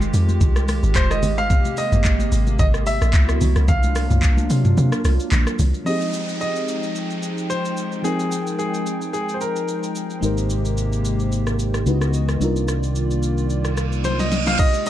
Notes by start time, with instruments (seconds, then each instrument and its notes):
Already playing: log drum bass F1, analog synth pad D#3 G#3 F4 G4, grand piano C5
0.01 high conga, shaker
0.14 log drum bass F2, open hi-hat, shaker
0.29 high conga, shaker
0.41 log drum bass C2, kick, low conga, shaker
0.56 cross-stick, shaker
0.68 cross-stick, open hi-hat, high conga, shaker
0.83 log drum bass G#1, shaker
0.95 grand piano C5, kick, clap, high conga, shaker
1.11 grand piano D#5, cross-stick, shaker
1.23 log drum bass G#1, open hi-hat, high conga, low conga, shaker
1.38 grand piano F5, shaker
1.50 analog synth pad C3 A#3, kick, low conga, shaker
1.65 high conga, shaker
1.77 grand piano D#5, open hi-hat, shaker
1.92 log drum bass G#1, mid tom, high conga, shaker
2.04 kick, clap, shaker
2.19 high conga, shaker
2.32 log drum bass G#1, open hi-hat, shaker
2.47 high conga, shaker
2.59 log drum bass G#1, grand piano D#5, kick, low conga, shaker
2.74 cross-stick, shaker
2.86 grand piano E5, open hi-hat, high conga, shaker
3.02 log drum bass A#1, cross-stick, shaker
3.13 log drum bass C#2, analog synth pad F#3 B3 E4 F#4, kick, clap, high conga, shaker
3.29 cross-stick, shaker
3.41 log drum bass C2, open hi-hat, high conga, low conga, shaker
3.56 log drum bass C#2, cross-stick, shaker
3.68 log drum bass C2, analog synth pad A#3 D4 F4, grand piano F5, kick, low conga, shaker
3.83 high conga, shaker
3.95 cross-stick, open hi-hat, shaker
4.10 log drum bass C2, mid tom, high conga, shaker
4.23 kick, clap, shaker
4.37 high conga, shaker
4.50 log drum bass C3, open hi-hat, shaker
4.65 mid tom, high conga, shaker
4.77 log drum bass C3, low conga, shaker
4.92 cross-stick, shaker
5.05 log drum bass C2, cross-stick, open hi-hat, high conga, shaker
5.20 shaker
5.32 log drum bass A#1, clap, high conga, low conga, shaker
5.47 cross-stick, shaker
5.59 log drum bass C2, open hi-hat, high conga, low conga, shaker
5.74 shaker
5.85 fm electric piano F3 C4 D#4 G4, analog synth pad F3 G#3 D#4 G5, grand piano D#5, downlifter, shaker
5.90 fm electric piano G#4
6.01 shaker
6.13 shaker
6.29 shaker
6.41 grand piano D#5, shaker
6.56 shaker
6.68 shaker
6.83 shaker
6.95 shaker
7.10 shaker
7.23 shaker
7.38 shaker
7.50 grand piano C5, shaker
7.65 shaker
7.77 shaker
7.92 shaker
8.03 fm electric piano F3 C4 D#4 G5, grand piano G#4, shaker
8.08 fm electric piano A#4
8.19 shaker
8.32 shaker
8.47 shaker
8.59 grand piano G#4, shaker
8.74 shaker
8.86 shaker
9.01 shaker
9.13 grand piano G#4, shaker
9.29 shaker
9.34 grand piano C5
9.41 grand piano A#4, shaker
9.56 shaker
9.68 shaker
9.83 shaker
9.95 shaker
10.10 shaker
10.21 fingered electric bass G#1, analog synth pad C3 G#3 A#3 G4, fm electric piano G#3 D#4 G4 A#4, shaker
10.26 fm electric piano C5
10.38 shaker
10.50 shaker
10.65 shaker
10.77 shaker
10.93 shaker
11.05 shaker
11.20 shaker
11.32 shaker
11.47 cross-stick, shaker
11.59 shaker
11.74 cross-stick, shaker
11.86 fingered electric bass C#2, fm electric piano C#3 G#3 D#4 E4 F#4 B4, analog synth pad E3 B3 F#4 D#5, shaker
12.01 cross-stick, shaker
12.14 shaker
12.29 cross-stick, shaker
12.39 fingered electric bass C2, fm electric piano C3 G3 D4 D#4, analog synth pad D#3 A#3 F4 D5, shaker
12.43 fm electric piano F4 A#4
12.56 shaker
12.68 cross-stick, shaker
12.83 shaker
12.95 shaker
13.11 shaker
13.23 shaker
13.38 shaker
13.50 reverse cymbal, shaker
13.65 cross-stick, shaker
13.77 cross-stick, shaker
13.92 shaker
14.04 grand piano C5, snare, shaker
14.19 grand piano D#5, snare, shaker
14.32 snare, shaker
14.47 grand piano F5, snare, shaker
14.59 analog synth pad D#3 G#3 F4 G4, grand piano D#5, kick, crash, shaker
14.74 shaker
14.86 grand piano D#5, open hi-hat, shaker